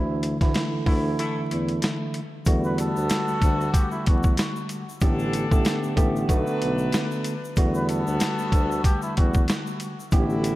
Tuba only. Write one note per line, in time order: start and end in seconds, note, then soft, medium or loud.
0.00 0.36 D2 loud
0.41 0.54 D2 medium
0.73 0.79 D2 soft
0.86 1.15 D2 medium
1.37 1.42 E2 soft
1.51 1.80 E2 medium
2.46 2.91 E2 loud
2.96 3.09 D2 loud
3.28 3.34 D2 soft
3.42 3.71 D2 loud
3.92 3.98 E2 soft
4.07 4.35 E2 medium
5.02 5.46 A1 loud
5.51 5.64 A1 medium
5.83 5.89 A1 soft
5.97 6.26 A1 medium
6.29 6.45 B1 loud
6.47 6.53 B1 soft
6.62 6.90 B1 medium
7.57 8.01 E2 loud
8.07 8.20 D2 medium
8.39 8.44 D2 soft
8.52 8.81 D2 loud
9.03 9.08 E2 soft
9.18 9.46 E2 medium
10.12 10.55 A1 loud